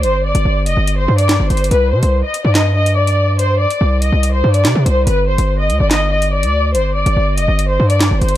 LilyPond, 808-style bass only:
\new Staff \with { instrumentName = "808-style bass" } { \clef bass \time 4/4 \key c \minor \tempo 4 = 143 g,,8. g,,16 g,,8 f,,16 g,,8. g,8. g,,16 g,,8 | c,8 c16 c,8 r8 g,2~ g,16~ | g,8. r16 c,8. c,8. g,8 c16 c16 c,8 | g,,8. g,,8. d,16 g,,4. d,8. |
g,,8. g,,16 g,,8 f,,16 g,,8. g,8. g,,16 g,,8 | }